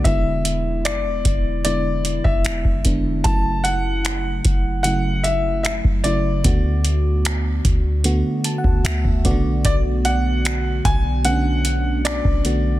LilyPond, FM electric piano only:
<<
  \new Staff \with { instrumentName = "FM electric piano" } { \time 4/4 \key b \dorian \tempo 4 = 75 r1 | r1 | r2 \tuplet 3/2 { r8. a''16 fis''8 } e''8 d''8 | r1 | }
  \new Staff \with { instrumentName = "FM electric piano" } { \time 4/4 \key b \dorian <d gis b e'>2 <d gis b e'>4. <d gis b d'>8 | <cis fis a e'>2 <cis fis a e'>4. <cis fis a e'>8 | <d a b fis'>2 <d a b fis'>4. <cis d a b fis'>8~ | <cis d a b fis'>4. r8 <d a b cis' d'>4. <d a b fis'>8 | }
>>